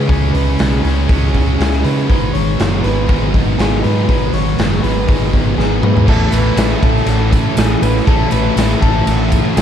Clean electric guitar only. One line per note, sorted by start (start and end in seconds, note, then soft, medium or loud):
0.00 0.09 G#4 medium
0.09 1.33 G#4 medium
0.33 0.83 B4 medium
1.59 3.58 G#4 medium
1.84 2.08 B4 medium
2.09 2.33 B4 medium
2.33 2.83 C#5 medium
2.84 3.34 B4 medium
3.58 3.83 G#4 medium
3.83 4.07 B4 medium
4.08 4.33 B4 medium
4.34 4.83 C#5 medium
4.83 5.33 B4 medium
5.58 5.82 G#4 medium
5.83 6.08 B4 medium
6.09 6.33 A4 medium
6.34 6.82 B4 medium
6.83 7.32 A4 medium
7.58 7.82 G#4 medium
7.82 8.07 B4 medium
8.07 8.32 A4 medium
8.32 8.81 B4 medium
8.82 9.31 A4 medium
9.56 9.62 G#4 medium